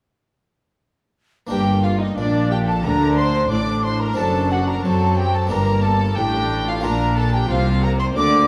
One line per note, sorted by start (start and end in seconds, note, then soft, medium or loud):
1.47 2.14 G1 medium
1.47 2.14 G2 medium
1.47 3.45 A#3 medium
1.47 3.46 D4 medium
1.47 4.14 A#4 medium
1.47 1.82 G5 medium
1.47 1.86 G5 medium
1.51 2.14 G2 medium
1.51 2.14 A#3 medium
1.51 1.82 G4 medium
1.84 2.00 F4 medium
1.84 1.91 F5 medium
1.84 2.02 F5 medium
2.00 2.17 D#4 medium
2.00 2.17 D#5 medium
2.00 2.18 D#5 medium
2.17 2.83 A#1 medium
2.17 2.83 A#2 medium
2.17 2.81 A#2 medium
2.17 2.50 D4 medium
2.17 2.84 D4 medium
2.17 2.50 D5 medium
2.17 2.54 D5 medium
2.50 2.68 G4 medium
2.50 2.57 G5 medium
2.50 2.68 G5 medium
2.67 2.85 A4 medium
2.67 2.84 A5 medium
2.67 2.85 A5 medium
2.84 3.51 D2 medium
2.84 3.51 D3 medium
2.84 3.47 D3 medium
2.84 3.50 D4 medium
2.84 3.18 A#4 medium
2.84 3.17 A#5 loud
2.84 3.20 A#5 medium
3.16 3.51 C5 medium
3.16 3.50 C6 medium
3.16 3.52 C6 medium
3.50 4.17 A1 medium
3.50 4.17 A2 medium
3.50 4.14 A2 medium
3.50 4.16 D4 medium
3.50 3.84 D5 medium
3.50 3.83 D6 loud
3.50 3.86 D6 medium
3.84 4.01 C5 medium
3.84 4.02 C6 medium
3.84 4.01 C6 medium
4.00 4.18 A#4 medium
4.00 4.17 A#5 medium
4.00 4.18 A#5 medium
4.14 4.83 F#1 medium
4.14 4.83 F#2 medium
4.14 5.45 C4 medium
4.14 5.46 D4 medium
4.14 4.83 D4 medium
4.14 5.47 A4 medium
4.14 4.51 A5 loud
4.14 4.53 A5 medium
4.18 4.81 F#2 medium
4.18 4.52 A4 medium
4.51 4.69 F#4 medium
4.51 4.68 F#5 medium
4.51 4.67 F#5 medium
4.67 4.85 A#4 medium
4.67 4.73 A#5 medium
4.67 4.84 A#5 medium
4.84 5.50 F#2 medium
4.84 5.50 F#3 medium
4.84 5.47 F#3 medium
4.84 5.51 C4 medium
4.84 5.18 A4 medium
4.84 5.17 A5 medium
4.84 5.19 A5 medium
5.17 5.35 G4 medium
5.17 5.37 G5 medium
5.17 5.35 G5 loud
5.34 5.51 A4 medium
5.34 5.51 A5 medium
5.34 5.53 A5 medium
5.47 6.17 G1 medium
5.47 6.14 A#3 medium
5.47 6.15 D4 medium
5.47 6.80 G4 medium
5.47 5.84 A#5 loud
5.51 6.17 G2 medium
5.51 6.14 G2 medium
5.51 6.18 A#3 medium
5.51 5.85 A#4 medium
5.51 5.84 A#5 medium
5.83 6.18 A4 medium
5.83 6.18 A5 loud
5.83 6.18 A5 medium
6.17 6.83 A1 medium
6.17 6.83 A2 medium
6.17 6.81 A2 medium
6.17 6.83 D4 medium
6.17 6.68 G4 medium
6.17 6.68 G5 loud
6.17 6.45 G5 medium
6.67 6.84 F4 medium
6.67 6.85 F5 medium
6.67 6.85 F5 loud
6.80 7.51 A#1 medium
6.80 8.47 A#3 medium
6.80 8.47 D4 medium
6.80 8.47 F4 medium
6.80 7.18 A#4 medium
6.80 7.19 A#5 loud
6.85 7.47 A#2 medium
6.85 7.51 A#2 medium
6.85 7.49 D4 medium
6.85 7.17 A#5 loud
7.17 7.34 A4 medium
7.17 7.36 A5 medium
7.17 7.34 A5 loud
7.34 7.50 G4 medium
7.34 7.49 G5 medium
7.34 7.51 G5 medium
7.50 8.15 C2 medium
7.50 8.13 C3 medium
7.50 8.16 C3 medium
7.50 8.17 C4 medium
7.50 7.84 F4 medium
7.50 7.85 F5 loud
7.50 7.84 F5 loud
7.83 8.00 A#4 medium
7.83 7.90 A#5 loud
7.83 8.00 A#5 medium
7.99 8.16 C5 medium
7.99 8.06 C6 medium
7.99 8.07 C6 medium
8.15 8.47 D2 medium
8.15 8.47 D3 medium
8.15 8.47 A#3 medium
8.15 8.47 D5 medium
8.15 8.47 D6 loud